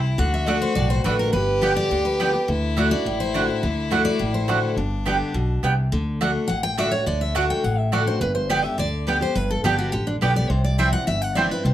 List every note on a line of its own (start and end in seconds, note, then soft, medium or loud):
0.00 0.14 C2 medium
0.00 0.17 C3 medium
0.00 0.20 E4 loud
0.18 0.62 D2 medium
0.18 0.45 D3 loud
0.18 1.19 F#4 loud
0.18 0.33 F#5 medium
0.34 0.48 E5 medium
0.46 0.74 D3 medium
0.46 0.56 A3 medium
0.46 0.75 A3 medium
0.46 0.75 D4 medium
0.46 0.57 F#4 medium
0.46 0.75 F#4 medium
0.46 0.61 D5 medium
0.46 0.57 D5 loud
0.46 0.57 F#5 loud
0.62 0.75 C5 medium
0.75 1.01 B1 medium
0.75 1.31 A2 loud
0.75 0.90 D5 loud
0.90 1.04 C5 medium
1.04 1.29 A1 medium
1.04 1.32 D3 medium
1.04 1.14 A3 medium
1.04 1.32 A3 medium
1.04 1.32 D4 medium
1.04 1.14 F#4 medium
1.04 1.33 F#4 medium
1.04 1.19 B4 medium
1.04 1.14 D5 medium
1.04 1.14 F#5 medium
1.19 1.32 A#4 medium
1.33 1.77 G1 medium
1.33 1.88 G2 loud
1.33 2.50 G4 loud
1.33 1.60 B4 medium
1.61 1.89 D3 medium
1.61 1.89 G3 medium
1.61 1.71 B3 medium
1.61 1.90 B3 medium
1.61 1.72 G4 medium
1.61 1.90 G4 medium
1.61 1.72 D5 medium
1.61 1.72 G5 loud
1.76 2.03 D5 loud
1.91 2.34 D2 medium
1.91 2.18 D3 medium
2.05 2.45 B4 medium
2.20 2.34 D3 medium
2.20 2.34 G3 medium
2.20 2.29 B3 medium
2.20 2.34 B3 medium
2.20 2.29 G4 medium
2.20 2.32 G4 medium
2.20 2.29 D5 loud
2.20 2.29 G5 medium
2.33 2.48 B3 soft
2.33 2.47 G4 medium
2.48 2.92 D2 loud
2.48 2.75 D3 medium
2.48 4.79 E4 loud
2.77 2.91 D3 medium
2.77 2.86 A3 medium
2.77 2.91 A3 medium
2.77 2.91 D4 medium
2.77 2.86 F#4 medium
2.77 2.90 F#4 medium
2.77 2.86 D5 loud
2.77 2.86 F#5 loud
2.91 3.06 D4 medium
2.91 3.05 F#4 medium
2.91 3.18 D5 loud
3.06 3.49 A1 medium
3.06 3.61 A2 medium
3.20 3.60 C5 medium
3.34 3.48 D3 medium
3.34 3.43 A3 medium
3.34 3.48 A3 medium
3.34 3.49 D4 medium
3.34 3.44 F#4 medium
3.34 3.47 F#4 medium
3.34 3.44 D5 medium
3.34 3.44 F#5 loud
3.48 3.63 D4 medium
3.48 3.62 F#4 medium
3.63 4.06 D2 loud
3.63 3.89 D3 medium
3.91 4.18 D3 medium
3.91 4.00 A3 medium
3.91 4.19 A3 medium
3.91 4.19 D4 medium
3.91 4.01 F#4 loud
3.91 4.19 F#4 medium
3.91 4.01 D5 loud
3.91 4.01 F#5 medium
4.05 4.32 D5 loud
4.19 4.63 A1 medium
4.19 4.74 A2 medium
4.34 4.74 C5 medium
4.48 4.76 D3 medium
4.48 4.58 A3 medium
4.48 4.76 A3 medium
4.48 4.76 D4 loud
4.48 4.58 F#4 medium
4.48 4.77 F#4 medium
4.48 4.58 D5 medium
4.48 4.58 F#5 medium
4.77 5.20 G1 medium
4.77 5.32 G2 medium
4.77 5.78 D4 medium
5.06 5.33 D3 medium
5.06 5.34 G3 medium
5.06 5.15 B3 medium
5.06 5.34 B3 medium
5.06 5.15 G4 medium
5.06 5.34 G4 medium
5.06 5.16 D5 loud
5.06 5.16 G5 loud
5.34 5.59 B1 medium
5.34 5.62 B2 medium
5.63 5.88 C2 medium
5.63 5.91 C3 medium
5.63 5.72 B3 medium
5.63 5.73 G4 medium
5.63 5.73 D5 medium
5.63 5.73 G5 loud
5.92 6.35 D2 loud
5.92 6.19 D3 loud
6.21 6.48 D3 medium
6.21 6.30 A3 medium
6.21 6.48 A3 medium
6.21 6.49 D4 medium
6.21 6.30 F#4 loud
6.21 6.49 F#4 medium
6.21 6.30 D5 loud
6.21 6.30 F#5 loud
6.48 6.93 A1 medium
6.48 7.04 A2 medium
6.48 6.63 F#5 loud
6.63 6.77 G5 loud
6.78 6.92 D3 medium
6.78 6.87 A3 medium
6.78 6.92 A3 medium
6.78 6.92 D4 medium
6.78 6.87 F#4 medium
6.78 6.91 F#4 medium
6.78 6.87 D5 loud
6.78 6.92 E5 medium
6.78 6.88 F#5 medium
6.91 7.07 D4 soft
6.91 7.06 F#4 medium
6.91 7.06 C#5 medium
7.06 7.50 D2 medium
7.06 7.34 D3 medium
7.06 7.21 D5 medium
7.21 7.35 E5 medium
7.35 7.63 D3 medium
7.35 7.44 A3 medium
7.35 7.63 A3 loud
7.35 7.63 D4 loud
7.35 7.44 F#4 loud
7.35 7.63 F#4 loud
7.35 7.44 D5 loud
7.35 7.45 F#5 loud
7.35 7.50 F#5 medium
7.50 7.64 G5 loud
7.64 8.07 A1 medium
7.64 8.19 A2 medium
7.64 7.78 F#5 medium
7.78 7.92 E5 medium
7.92 8.06 D3 medium
7.92 8.01 A3 medium
7.92 8.07 A3 medium
7.92 8.07 D4 medium
7.92 8.02 F#4 loud
7.92 8.05 F#4 medium
7.92 8.02 D5 medium
7.92 8.07 D5 medium
7.92 8.02 F#5 loud
8.07 8.21 D4 medium
8.07 8.21 F#4 medium
8.07 8.21 C5 medium
8.21 8.64 G1 loud
8.21 8.76 G2 loud
8.21 8.34 B4 medium
8.35 8.49 C5 medium
8.49 8.64 D3 medium
8.49 8.64 G3 medium
8.49 8.59 B3 medium
8.49 8.64 B3 medium
8.49 8.59 G4 medium
8.49 8.62 G4 medium
8.49 8.64 D5 medium
8.49 8.59 D5 loud
8.49 8.59 G5 loud
8.64 8.79 B3 medium
8.64 8.78 G4 medium
8.64 8.78 E5 loud
8.78 9.22 D2 medium
8.78 9.06 D3 medium
8.78 9.19 D5 medium
9.07 9.21 D3 medium
9.07 9.21 G3 medium
9.07 9.16 B3 medium
9.07 9.21 B3 medium
9.07 9.17 G4 medium
9.07 9.20 G4 loud
9.07 9.17 D5 loud
9.07 9.17 G5 medium
9.21 9.36 B3 medium
9.21 9.35 G4 medium
9.21 9.35 C5 medium
9.35 9.57 G1 medium
9.35 9.90 G2 loud
9.35 9.50 B4 medium
9.51 9.64 A4 medium
9.64 9.89 G1 medium
9.64 9.91 D3 medium
9.64 9.92 G3 medium
9.64 9.73 B3 medium
9.64 9.92 B3 medium
9.64 9.78 G4 medium
9.64 9.74 G4 loud
9.64 9.92 G4 loud
9.64 9.74 D5 loud
9.64 9.74 G5 loud
9.79 9.92 F#4 medium
9.92 10.17 A1 medium
9.92 10.20 D3 medium
9.92 10.07 G4 medium
10.07 10.16 D4 medium
10.21 10.46 B1 medium
10.21 10.35 D3 medium
10.21 10.36 G3 medium
10.21 10.31 B3 medium
10.21 10.36 B3 medium
10.21 10.31 G4 loud
10.21 10.34 G4 loud
10.21 10.31 D5 medium
10.21 10.31 G5 medium
10.35 10.50 B3 soft
10.35 10.49 G4 medium
10.35 10.50 D5 medium
10.50 10.93 C2 loud
10.50 11.04 C3 medium
10.50 10.64 C5 medium
10.64 10.78 D5 medium
10.78 10.92 E3 medium
10.78 10.93 G3 medium
10.78 10.88 C4 loud
10.78 10.93 C4 loud
10.78 10.88 E4 medium
10.78 10.92 E4 loud
10.78 10.88 C5 loud
10.78 10.92 E5 medium
10.78 10.88 G5 loud
10.93 11.08 C4 medium
10.93 11.07 E4 medium
10.93 11.07 F#5 loud
11.07 11.51 G1 medium
11.07 11.62 G2 loud
11.07 11.22 E5 medium
11.22 11.36 F#5 loud
11.35 11.50 E3 medium
11.35 11.51 G3 medium
11.35 11.45 C4 medium
11.35 11.51 C4 medium
11.35 11.46 E4 medium
11.35 11.50 E4 medium
11.35 11.46 C5 medium
11.35 11.51 D5 medium
11.35 11.46 G5 medium
11.51 11.65 C4 soft
11.51 11.65 E4 medium
11.51 11.64 B4 medium
11.64 11.74 C2 loud
11.64 11.74 C3 loud
11.64 11.74 C5 loud